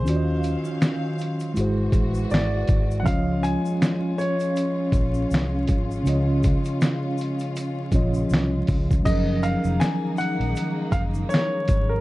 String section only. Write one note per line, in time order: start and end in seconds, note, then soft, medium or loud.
0.05 1.54 D#3 medium
0.05 1.54 F#3 medium
0.05 1.54 C#4 medium
0.05 1.54 F5 medium
1.55 3.04 E3 medium
1.55 9.02 G#3 medium
1.55 3.04 F#4 medium
3.05 9.02 C#4 medium
3.05 9.02 F4 medium
9.05 12.01 D#3 medium
9.05 12.01 G#3 medium
9.05 12.01 A#3 medium
9.05 12.01 D#4 medium